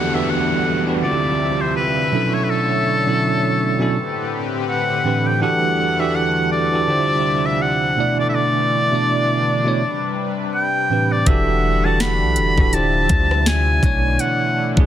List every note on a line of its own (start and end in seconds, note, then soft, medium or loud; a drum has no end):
0.00 1.01 E2 medium
0.00 1.01 D3 medium
0.00 0.13 E3 medium
0.00 2.09 G3 medium
0.00 1.01 A3 medium
0.00 0.14 B3 medium
0.00 0.14 D4 medium
0.00 0.15 F#4 medium
0.00 0.16 G4 medium
0.00 1.04 A4 loud
0.00 0.16 F#5 loud
0.00 1.01 F#5 medium
0.00 downlifter medium
0.13 0.78 E3 medium
0.13 0.79 B3 medium
0.13 0.79 D4 medium
0.13 0.79 F#4 medium
0.13 0.80 G4 medium
0.13 0.80 B4 medium
0.13 0.31 E5 medium
0.30 0.86 F#5 loud
0.86 1.02 E3 medium
0.86 1.02 B3 medium
0.86 1.03 D4 medium
0.86 1.03 F#4 medium
0.86 1.03 G4 medium
0.86 1.04 B4 medium
1.02 2.11 D2 medium
1.02 2.11 C3 medium
1.02 2.03 D3 medium
1.02 2.11 F3 medium
1.02 2.03 C4 medium
1.02 2.04 E4 medium
1.02 2.04 F4 medium
1.02 1.11 F#4 medium
1.02 1.62 D5 loud
1.02 3.92 E5 medium
1.11 2.08 G4 medium
1.61 1.75 C5 medium
1.76 2.35 B4 medium
2.11 2.96 B2 medium
2.11 3.93 D3 medium
2.11 2.96 F#3 medium
2.11 3.93 A3 medium
2.11 2.96 C#4 medium
2.11 2.97 D4 medium
2.11 2.97 E4 medium
2.11 2.97 A4 medium
2.11 3.93 C#5 medium
2.34 2.45 C#5 medium
2.44 2.51 B4 medium
2.49 4.43 A4 loud
3.05 3.71 B2 medium
3.05 3.71 F#3 medium
3.05 3.72 C#4 medium
3.05 3.72 D4 medium
3.05 3.72 E4 medium
3.05 3.73 A4 medium
3.79 3.95 B2 medium
3.79 3.95 F#3 medium
3.79 3.95 C#4 medium
3.79 3.96 D4 medium
3.79 3.96 E4 medium
3.79 3.96 A4 loud
3.95 5.40 A2 medium
3.95 6.85 D3 medium
3.95 5.40 C4 medium
3.95 5.40 G4 medium
3.95 5.40 B4 medium
4.69 5.28 F#5 loud
5.04 5.38 A2 medium
5.04 5.38 E3 medium
5.04 5.39 C4 medium
5.04 5.39 D4 medium
5.04 5.39 G4 medium
5.04 5.40 B4 medium
5.26 5.41 G5 medium
5.40 6.86 E2 medium
5.40 5.93 E3 loud
5.40 6.86 G3 medium
5.40 6.86 A3 medium
5.40 5.93 D4 medium
5.40 5.93 F#4 medium
5.40 5.94 G4 medium
5.40 5.94 A4 loud
5.40 6.86 F#5 medium
5.40 6.01 F#5 loud
5.98 6.64 E3 medium
5.98 6.64 D4 medium
5.98 6.65 F#4 medium
5.98 6.65 G4 medium
5.98 6.65 A4 medium
5.98 6.17 E5 medium
6.15 6.51 F#5 loud
6.52 7.47 D5 loud
6.72 6.87 E3 medium
6.72 6.86 D4 medium
6.72 6.88 F#4 medium
6.72 6.89 G4 medium
6.72 6.89 A4 medium
6.87 7.96 D2 medium
6.87 7.96 C3 medium
6.87 7.88 D3 medium
6.87 7.96 F3 medium
6.87 7.96 G3 medium
6.87 7.89 D4 medium
6.87 7.89 E4 medium
6.87 7.89 F4 medium
6.87 7.90 G4 medium
6.87 7.90 C5 medium
6.87 7.96 E5 medium
7.46 7.63 E5 loud
7.62 8.19 F#5 loud
7.97 8.81 B2 medium
7.97 9.78 D3 medium
7.97 9.78 E3 medium
7.97 9.78 A3 medium
7.97 8.82 A3 medium
7.97 11.23 D4 medium
7.97 8.82 D4 medium
7.97 8.83 E4 medium
7.97 8.83 D5 medium
8.19 8.28 D5 medium
8.29 8.36 E5 medium
8.35 10.28 D5 loud
8.91 9.56 B2 medium
8.91 9.57 A3 medium
8.91 9.57 D4 medium
8.91 9.58 E4 medium
8.91 9.58 D5 medium
9.64 9.80 B2 medium
9.64 9.80 A3 medium
9.64 9.81 D4 medium
9.64 9.81 E4 medium
9.64 9.82 C#5 loud
9.80 11.25 C3 medium
9.80 13.79 G3 medium
9.80 11.25 B4 medium
10.54 11.13 G5 loud
10.89 11.23 A2 medium
10.89 11.24 E3 medium
10.89 11.24 C4 medium
10.89 11.24 D4 medium
10.89 11.25 G4 medium
10.89 11.25 B4 medium
11.12 11.29 D5 loud
11.26 12.23 E1 loud
11.26 12.72 D3 medium
11.26 11.78 E3 medium
11.26 12.72 A3 medium
11.26 11.78 D4 medium
11.26 11.79 F#4 medium
11.26 11.79 G4 medium
11.26 11.80 A4 loud
11.26 11.87 E5 loud
11.26 12.72 F#5 medium
11.26 kick loud
11.26 closed hi-hat medium
11.84 12.49 E3 medium
11.84 12.50 D4 medium
11.84 12.50 F#4 medium
11.84 12.50 G4 medium
11.84 12.51 A4 medium
11.84 12.02 A5 loud
12.00 12.75 B5 loud
12.00 snare loud
12.21 12.38 B1 loud
12.36 12.57 E1 loud
12.36 closed hi-hat medium
12.57 13.08 D1 loud
12.57 12.73 E3 medium
12.57 12.72 D4 medium
12.57 12.74 F#4 medium
12.57 12.74 G4 medium
12.57 12.74 A4 medium
12.57 kick loud
12.72 13.82 C3 medium
12.72 13.73 D3 medium
12.72 13.82 F3 medium
12.72 13.74 D4 medium
12.72 13.74 E4 medium
12.72 13.75 F4 medium
12.72 13.75 G4 medium
12.72 13.75 C5 medium
12.72 13.82 E5 medium
12.72 13.48 A5 loud
12.72 closed hi-hat medium
13.09 13.80 D2 loud
13.09 kick loud
13.09 closed hi-hat medium
13.31 cross-stick medium
13.46 14.21 G#5 loud
13.46 snare loud
13.46 closed hi-hat medium
13.82 14.18 B1 loud
13.82 14.67 B2 medium
13.82 14.86 D3 medium
13.82 14.86 E3 medium
13.82 14.86 A3 medium
13.82 14.67 A3 medium
13.82 14.86 D4 medium
13.82 14.67 D4 medium
13.82 14.68 E4 medium
13.82 14.68 C#5 medium
13.82 kick loud
13.82 closed hi-hat medium
14.19 14.67 F#5 loud
14.19 closed hi-hat medium
14.76 14.86 B2 medium
14.76 14.86 A3 medium
14.76 14.86 D4 medium
14.76 14.86 E4 medium
14.76 14.86 G#4 medium
14.76 kick loud